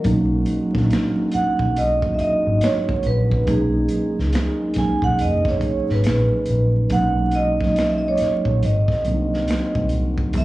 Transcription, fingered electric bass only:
0.06 0.43 B1 loud
0.75 0.89 A#1 medium
1.35 muted fingered electric bass stroke soft
1.60 2.12 B1 medium
2.21 muted fingered electric bass stroke soft
2.47 2.60 G#1 medium
3.05 3.43 A#1 medium
3.48 3.85 B1 loud
4.19 4.32 C#2 medium
4.77 muted fingered electric bass stroke soft
5.03 5.23 B1 medium
5.21 5.58 F#1 loud
5.62 muted fingered electric bass stroke soft
5.90 6.04 G#1 medium
6.07 6.29 A#1 medium
6.49 6.86 A#1 medium
6.91 8.15 B1 medium
8.21 muted fingered electric bass stroke soft
8.46 8.60 A#1 medium
8.64 8.86 G#1 medium
8.89 muted fingered electric bass stroke soft
9.07 9.44 C2 medium
9.76 9.89 C2 medium
9.93 10.35 C2 medium
10.35 10.45 C#2 medium

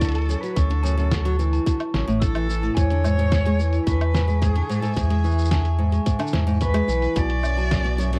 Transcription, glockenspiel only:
0.15 0.28 A5 loud
0.56 0.64 C#6 medium
0.83 0.96 A5 loud
1.25 1.33 C#6 medium
1.53 1.66 A5 loud
1.94 2.02 C#6 medium
2.08 2.16 A5 medium
2.20 2.34 E6 medium
2.62 2.70 A5 medium
2.75 2.89 G#5 loud
3.17 3.25 C#6 medium
3.45 3.58 G#5 loud
3.87 3.95 C#6 medium
4.15 4.27 G#5 loud
4.56 4.64 C#6 medium
4.83 4.96 G#5 loud
5.25 5.33 C#6 medium
5.52 5.65 G#5 loud
5.94 6.01 C#6 medium
6.20 6.33 G#5 loud
6.62 6.70 C#6 medium
6.90 7.03 G#5 loud
7.31 7.39 C#6 medium
7.58 7.71 A5 loud
7.99 8.07 C#6 medium

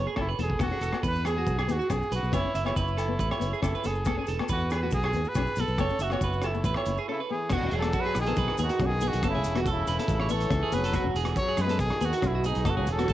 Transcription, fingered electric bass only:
0.17 0.37 F#1 medium
0.39 0.59 E1 medium
0.59 0.70 E1 medium
0.81 0.92 E1 medium
1.03 1.43 E2 medium
1.47 1.67 B1 medium
1.69 1.79 D#2 medium
1.90 2.00 B1 medium
2.12 2.22 B1 medium
2.23 2.32 B1 medium
2.32 2.43 F#1 loud
2.55 2.75 F#1 medium
2.76 3.16 F#1 medium
3.19 3.30 A1 medium
3.41 3.52 F#1 medium
3.62 3.73 F#1 medium
3.85 4.06 F#1 medium
4.06 4.17 E1 medium
4.28 4.39 E1 medium
4.49 4.89 E2 medium
4.92 5.12 B1 medium
5.13 5.24 D#2 medium
5.35 5.46 B1 loud
5.57 5.68 B1 medium
5.68 5.78 B1 loud
5.78 5.89 F#1 loud
5.99 6.19 F#1 medium
6.21 6.61 F#1 medium
6.64 6.75 A1 medium
6.86 6.97 F#1 medium
7.50 7.61 E1 loud
7.61 7.71 E1 medium
7.72 7.92 E1 medium
8.16 8.35 A#1 loud
8.37 8.47 B1 medium
8.59 8.69 D#2 medium
8.79 9.10 B1 loud
9.14 9.22 B1 medium
9.23 9.37 F#1 loud
9.35 9.44 C#2 medium
9.45 9.85 E1 medium
9.87 9.98 E1 medium
10.08 10.48 A1 medium
10.50 10.61 C#2 loud
10.72 10.93 F1 medium
10.93 11.04 E1 loud
11.05 11.14 E1 medium
11.14 11.35 E1 medium
11.58 11.78 F#2 loud
11.79 11.90 B1 medium
12.01 12.12 D#2 medium
12.22 12.53 B1 medium
12.56 12.64 B1 medium
12.65 12.78 F#1 loud
12.77 12.86 C#2 medium
12.86 13.13 E1 loud

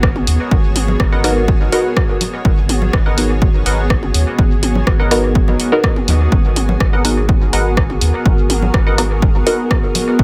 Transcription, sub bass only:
0.00 0.24 G#1 medium
0.27 0.38 D#2 medium
0.51 0.96 G#1 medium
1.00 1.69 G#1 medium
2.45 2.90 G#1 loud
2.93 3.63 G#1 medium
3.66 4.11 G#1 medium
4.14 4.25 D#2 medium
4.39 4.84 G#1 medium
4.87 5.56 G#1 medium
6.08 6.28 D#2 loud
6.32 6.77 G#1 loud
6.80 7.50 G#1 medium
7.53 7.98 G#1 medium
8.01 8.12 D#2 medium
8.26 8.71 G#1 loud
8.74 9.43 G#1 medium
10.19 10.24 G#1 loud

